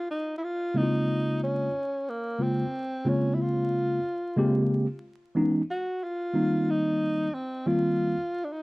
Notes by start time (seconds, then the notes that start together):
0.10 D#4
0.38 E4
0.44 F4
0.74 C#3 G#3 A#3 C4 D#4 E4
0.83 F4
1.43 C#4
2.09 A#3
2.39 C#3 G#3 A#3 C4 F4
3.04 C#3 G#3 A#3 C4 C#4 F4
3.34 E4
3.41 F4
4.36 C#3 G#3 A#3 C4 G4
5.35 E3 G#3 B3 C#4 D#4
5.70 F#4
6.03 F4
6.33 D#3 G3 A#3 C4 D#4
6.70 D#4
7.34 C4
7.66 D#3 G3 A#3 C4 F4
8.44 D4
8.52 D#4